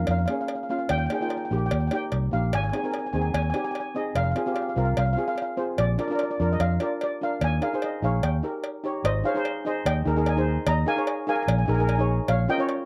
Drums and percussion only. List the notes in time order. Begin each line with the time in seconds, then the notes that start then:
0.07 cowbell
0.28 cowbell
0.48 cowbell
0.89 cowbell
1.10 cowbell
1.30 cowbell
1.71 cowbell
1.91 cowbell
2.12 cowbell
2.53 cowbell
2.73 cowbell
2.94 cowbell
3.34 cowbell
3.54 cowbell
3.75 cowbell
4.16 cowbell
4.36 cowbell
4.56 cowbell
4.97 cowbell
5.38 cowbell
5.78 cowbell
5.99 cowbell
6.19 cowbell
6.60 cowbell
6.80 cowbell
7.01 cowbell
7.41 cowbell
7.62 cowbell
7.82 cowbell
8.23 cowbell
8.64 cowbell
9.05 cowbell
9.45 cowbell
9.86 cowbell
10.26 cowbell
10.67 cowbell
11.07 cowbell
11.48 cowbell
11.89 cowbell
12.28 cowbell
12.69 cowbell